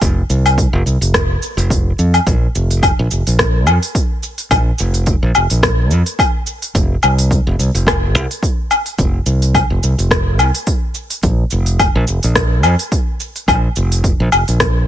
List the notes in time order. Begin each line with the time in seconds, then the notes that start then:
0.02 F1, kick, open hi-hat, shaker
0.30 C2, shaker
0.46 open hi-hat, low woodblock, shaker
0.58 kick, open hi-hat, shaker
0.73 F1
0.86 C2, shaker
1.01 F1, open hi-hat, shaker
1.14 kick, cross-stick, open hi-hat, shaker
1.42 shaker
1.57 F1, open hi-hat, shaker
1.70 kick, open hi-hat, shaker
1.99 F2, shaker
2.14 open hi-hat, low woodblock, shaker
2.27 A#1, kick, open hi-hat, shaker
2.55 F1, shaker
2.71 open hi-hat, shaker
2.83 kick, open hi-hat, low woodblock, shaker
2.99 A#1
3.11 F1, shaker
3.27 A#1, open hi-hat, shaker
3.39 kick, cross-stick, open hi-hat, shaker
3.67 F2, low woodblock, shaker
3.83 open hi-hat, shaker
3.95 kick, open hi-hat, shaker
4.23 shaker
4.38 open hi-hat, shaker
4.51 A#1, kick, open hi-hat, low woodblock, shaker
4.78 F1, shaker
4.94 open hi-hat, shaker
5.06 kick, open hi-hat, shaker
5.23 A#1
5.35 F1, low woodblock, shaker
5.50 A#1, open hi-hat, shaker
5.63 kick, cross-stick, open hi-hat, shaker
5.91 F2, shaker
6.06 open hi-hat, shaker
6.19 kick, open hi-hat, low woodblock, shaker
6.47 shaker
6.62 open hi-hat, shaker
6.75 F1, kick, open hi-hat, shaker
7.03 C2, low woodblock, shaker
7.18 open hi-hat, shaker
7.31 kick, open hi-hat, shaker
7.47 F1
7.59 C2, shaker
7.75 F1, open hi-hat, shaker
7.87 kick, cross-stick, open hi-hat, low woodblock, shaker
8.15 C2, shaker
8.31 open hi-hat, shaker
8.43 kick, open hi-hat, shaker
8.71 low woodblock, shaker
8.86 open hi-hat, shaker
8.98 F1, kick, open hi-hat, shaker
9.26 C2, shaker
9.42 open hi-hat, shaker
9.55 kick, open hi-hat, low woodblock, shaker
9.70 F1
9.83 C2, shaker
9.98 F1, open hi-hat, shaker
10.11 kick, cross-stick, open hi-hat, shaker
10.39 C2, low woodblock, shaker
10.55 open hi-hat, shaker
10.67 kick, open hi-hat, shaker
10.95 shaker
11.10 open hi-hat, shaker
11.23 A#1, kick, open hi-hat, shaker
11.51 F1, shaker
11.66 open hi-hat, shaker
11.79 kick, open hi-hat, low woodblock, shaker
11.95 A#1
12.07 F1, shaker
12.23 A#1, open hi-hat, shaker
12.36 kick, cross-stick, open hi-hat, shaker
12.63 F2, low woodblock, shaker
12.79 open hi-hat, shaker
12.92 kick, open hi-hat, shaker
13.20 shaker
13.36 open hi-hat, shaker
13.48 A#1, kick, open hi-hat, low woodblock, shaker
13.76 F1, shaker
13.92 open hi-hat, shaker
14.04 kick, open hi-hat, shaker
14.20 A#1
14.32 F1, low woodblock, shaker
14.48 A#1, open hi-hat, shaker
14.60 kick, cross-stick, open hi-hat, shaker